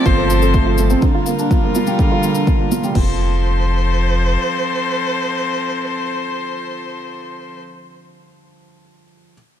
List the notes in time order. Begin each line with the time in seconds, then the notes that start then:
Already playing: F3 A3 C4 F4 A4
0.05 G1 F3 C5, kick, shaker
0.18 C5
0.30 F4, shaker
0.42 A4, shaker
0.54 A3, kick, shaker
0.66 F4
0.78 A3, shaker
0.90 C4, shaker
1.02 D3 G3 F4 A#4, kick, shaker
1.15 F4
1.26 A#3, shaker
1.39 D4, shaker
1.51 F3, kick, shaker
1.64 A#3
1.75 F3, shaker
1.87 G3, shaker
1.99 D3, kick, shaker
2.12 F4
2.23 A#3, shaker
2.35 D4, shaker
2.47 F3, kick, shaker
2.59 A#3
2.72 F3, shaker
2.84 G3, shaker
2.95 F1 F3 C4 A4 C5, kick, crash